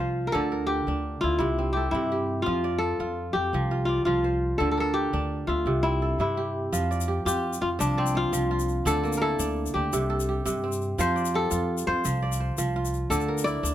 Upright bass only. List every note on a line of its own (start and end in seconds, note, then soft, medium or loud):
0.00 0.27 C2 medium
0.34 0.80 D2 medium
0.87 1.18 D2 medium
1.23 1.39 D2 medium
1.39 1.86 C2 medium
1.92 2.39 G2 medium
2.47 2.93 F2 medium
3.00 3.31 F2 medium
3.35 3.50 F2 medium
3.53 3.99 C2 medium
4.06 4.52 C2 medium
4.60 5.06 D2 medium
5.13 5.44 D2 medium
5.48 5.64 D2 medium
5.66 6.12 C2 medium
6.18 6.65 G2 medium
6.73 7.19 F2 medium
7.25 7.57 F2 medium
7.61 7.77 F2 medium
7.80 8.26 C2 medium
8.32 8.79 C2 medium
8.85 9.32 D2 loud
9.39 9.70 D2 medium
9.75 9.90 D2 medium
9.93 10.39 C2 medium
10.46 10.92 G2 medium
10.98 11.44 F2 loud
11.52 11.82 F2 medium
11.87 12.02 F2 medium
12.05 12.51 C2 medium
12.58 13.04 C2 medium
13.10 13.56 D2 loud
13.63 13.74 D2 medium